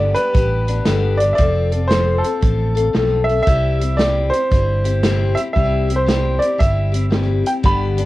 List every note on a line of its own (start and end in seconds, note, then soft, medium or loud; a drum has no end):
0.00 0.13 G1 medium
0.00 0.16 G2 medium
0.00 0.16 D3 medium
0.00 0.16 G3 medium
0.00 0.15 B3 medium
0.00 0.14 D4 medium
0.00 0.13 G4 medium
0.00 0.17 D5 loud
0.14 0.32 G3 soft
0.14 0.34 B3 soft
0.14 0.35 D4 soft
0.14 0.34 G4 medium
0.14 1.16 B4 loud
0.14 closed hi-hat medium
0.34 0.79 A1 medium
0.34 0.68 G3 medium
0.34 0.68 B3 medium
0.34 0.67 D4 medium
0.34 0.66 G4 medium
0.34 kick loud
0.34 closed hi-hat medium
0.67 0.85 G3 soft
0.67 0.86 B3 soft
0.67 0.86 D4 soft
0.67 0.86 G4 medium
0.67 closed hi-hat medium
0.85 1.32 G1 medium
0.85 1.20 G2 medium
0.85 1.20 D3 medium
0.85 1.21 G3 medium
0.85 1.21 B3 medium
0.85 1.20 D4 loud
0.85 1.19 G4 loud
0.85 snare loud
0.85 closed hi-hat medium
1.17 1.38 D4 soft
1.17 1.39 G4 soft
1.17 1.33 D5 medium
1.17 closed hi-hat medium
1.22 1.37 G3 soft
1.22 1.38 B3 soft
1.33 1.91 D5 loud
1.33 1.39 E5 medium
1.37 2.21 F1 medium
1.37 1.72 F3 medium
1.37 1.73 C4 medium
1.37 1.72 F4 medium
1.37 1.70 A4 medium
1.37 kick loud
1.37 closed hi-hat medium
1.71 1.89 C4 soft
1.71 1.89 F4 soft
1.71 1.90 A4 medium
1.71 closed hi-hat medium
1.88 2.24 F3 medium
1.88 2.25 C4 medium
1.88 2.23 F4 medium
1.88 2.22 A4 medium
1.88 2.25 C5 medium
1.88 snare loud
1.88 closed hi-hat medium
2.18 3.29 A4 medium
2.23 2.41 C4 soft
2.23 2.42 F4 soft
2.23 2.43 A4 soft
2.23 closed hi-hat medium
2.41 2.87 A1 medium
2.41 2.76 F3 medium
2.41 2.77 C4 medium
2.41 2.76 F4 medium
2.41 2.74 A4 medium
2.41 kick loud
2.41 closed hi-hat medium
2.75 2.92 C4 soft
2.75 2.94 F4 medium
2.75 2.94 A4 medium
2.75 closed hi-hat medium
2.93 3.40 B1 medium
2.93 3.28 F3 medium
2.93 3.29 C4 medium
2.93 3.28 F4 medium
2.93 3.26 A4 loud
2.93 snare loud
2.93 closed hi-hat medium
3.24 3.47 A4 medium
3.24 3.41 E5 loud
3.29 3.46 C4 soft
3.29 3.47 F4 soft
3.29 closed hi-hat medium
3.43 3.81 C3 medium
3.43 3.99 E5 loud
3.47 4.29 C2 loud
3.47 3.81 G3 medium
3.47 3.81 C4 medium
3.47 3.80 E4 medium
3.47 3.78 G4 loud
3.47 kick loud
3.47 closed hi-hat medium
3.79 3.98 C4 soft
3.79 3.98 E4 medium
3.79 3.99 G4 medium
3.79 closed hi-hat medium
3.97 4.33 C3 medium
3.97 4.33 G3 medium
3.97 4.33 C4 medium
3.97 4.32 E4 medium
3.97 4.31 G4 medium
3.97 4.33 D5 medium
3.97 snare loud
3.97 closed hi-hat medium
4.30 4.52 E4 soft
4.30 4.51 G4 medium
4.30 5.39 C5 loud
4.30 closed hi-hat medium
4.35 4.51 C4 soft
4.51 5.34 G1 medium
4.51 4.85 G3 medium
4.51 4.86 C4 medium
4.51 4.85 E4 medium
4.51 4.83 G4 medium
4.51 kick loud
4.51 closed hi-hat medium
4.84 5.03 C4 soft
4.84 5.03 E4 medium
4.84 5.03 G4 medium
4.84 closed hi-hat medium
5.03 5.37 C3 medium
5.03 5.38 G3 medium
5.03 5.38 C4 loud
5.03 5.37 E4 loud
5.03 5.35 G4 loud
5.03 snare loud
5.03 closed hi-hat medium
5.35 5.56 E4 soft
5.35 5.56 G4 medium
5.35 5.40 E5 loud
5.35 closed hi-hat medium
5.40 5.55 C4 soft
5.53 6.38 C2 medium
5.53 5.89 C3 medium
5.53 5.90 G3 medium
5.53 5.90 C4 medium
5.53 5.89 E4 medium
5.53 5.99 E5 loud
5.53 kick loud
5.53 closed hi-hat medium
5.57 5.87 G4 loud
5.88 6.07 C4 soft
5.88 6.07 E4 soft
5.88 6.08 G4 medium
5.88 closed hi-hat medium
5.96 6.42 C5 medium
6.07 6.41 C3 medium
6.07 6.42 G3 medium
6.07 6.42 C4 medium
6.07 6.40 E4 medium
6.07 6.39 G4 medium
6.07 snare loud
6.07 closed hi-hat medium
6.39 6.59 E4 soft
6.39 6.59 G4 medium
6.39 6.59 D5 medium
6.39 closed hi-hat medium
6.43 6.58 C4 soft
6.58 7.42 G1 medium
6.58 6.93 G3 medium
6.58 6.94 C4 medium
6.58 6.92 E4 medium
6.58 6.91 G4 medium
6.58 7.08 E5 medium
6.58 kick loud
6.58 closed hi-hat medium
6.92 7.09 C4 soft
6.92 7.10 E4 medium
6.92 7.11 G4 medium
6.92 closed hi-hat medium
7.10 7.45 C3 medium
7.10 7.45 G3 medium
7.10 7.45 C4 medium
7.10 7.45 E4 medium
7.10 7.43 G4 medium
7.10 snare loud
7.10 closed hi-hat medium
7.44 7.64 C4 soft
7.44 7.64 E4 soft
7.44 7.63 G4 soft
7.44 7.52 G5 medium
7.44 closed hi-hat medium
7.63 8.05 G1 medium
7.63 7.98 G2 medium
7.63 7.98 D3 medium
7.63 7.98 G3 medium
7.63 7.98 B3 medium
7.63 7.97 D4 medium
7.63 7.96 G4 medium
7.63 8.05 B5 loud
7.63 kick loud
7.63 closed hi-hat medium
7.97 8.05 G3 soft
7.97 8.05 B3 soft
7.97 8.05 D4 medium
7.97 8.05 G4 medium
7.97 closed hi-hat medium